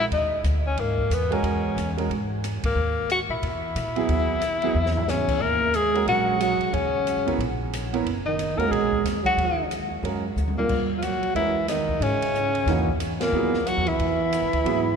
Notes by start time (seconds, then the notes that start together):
0.11 D#2 D#4, ride
0.44 D2, hi-hat pedal, ride
0.67 C#4
0.77 G#2 A#3, ride
0.98 kick
1.10 E2 B3, hi-hat pedal, ride
1.31 G#3 C#4 F#4 A#4, ride
1.43 E2, ride
1.76 E2, hi-hat pedal, ride
1.97 G#3 C#4 F#4 A#4, ride
2.10 G#2, ride
2.44 hi-hat pedal, ride
2.63 A#3, muted upright bass stroke, kick, ride
2.75 D#2
3.10 F#4, hi-hat pedal, ride
3.29 A#2 E4
3.42 E2, ride
3.75 A#2, hi-hat pedal, ride
3.96 F#3 B3 E4 G#4, ride
4.08 D#2, ride
4.42 hi-hat pedal, ride
4.62 F#3 B3 E4 G#4, ride
4.74 E2
4.86 snare
4.97 floor tom
5.08 C#3 C#4, snare, hi-hat pedal
5.28 kick, crash
5.40 D#2 A#3 A#4
5.74 G#3 G#4, hi-hat pedal, ride
5.94 G#3 C#4 F#4 A#4, ride
6.06 A#1 F#3 F#4, ride
6.39 F#3 F#4, hi-hat pedal, ride
6.60 muted upright bass stroke, ride
6.73 D#2 C#3 C#4, ride
7.07 hi-hat pedal, ride
7.17 F#2
7.26 C#2 B3 E4 A#4 C#5, ride
7.38 A#1, ride
7.73 hi-hat pedal, ride
7.93 B3 E4 A#4 C#5, ride
8.04 F#1, ride
8.26 D#3 D#4
8.39 hi-hat pedal, ride
8.57 E2 G#3 A#3 C#4 F#4 A#4, ride
8.69 A#1 G#3 G#4
8.73 ride
8.92 kick
9.04 E2, snare, hi-hat pedal, ride
9.23 F#3 F#4, kick, ride
9.36 D#2, ride
9.71 hi-hat pedal, ride
10.03 F#2 G#3 C#4 F#4 A#4, ride
10.36 D2, hi-hat pedal
10.48 high tom
10.56 A#2 A#3, high tom
10.69 D#2, kick, crash
10.98 F3 F4
11.02 F#3 F#4, hi-hat pedal, ride
11.23 muted upright bass stroke, ride
11.35 E2 E3 G#3 C#4 E4 F#4 A#4, ride
11.68 D#3 D#4, snare, hi-hat pedal, ride
11.89 kick
12.00 G#2 C#3 C#4, ride
12.22 ride
12.35 hi-hat pedal
12.55 ride
12.66 E2 E3 A#3 D#4 F#4, snare, ride
12.88 kick
13.00 hi-hat pedal, ride
13.21 A#2 A#3, snare, ride
13.32 D#2 F#3 B3 E4 G#4
13.54 snare
13.65 F#3 F#4, hi-hat pedal, ride
13.77 E2
13.86 C#2 E3 E4, ride
13.99 E2, ride
14.33 hi-hat pedal, ride
14.42 D#2
14.53 D2, ride
14.65 G#2 F#3 B3 E4 G#4, ride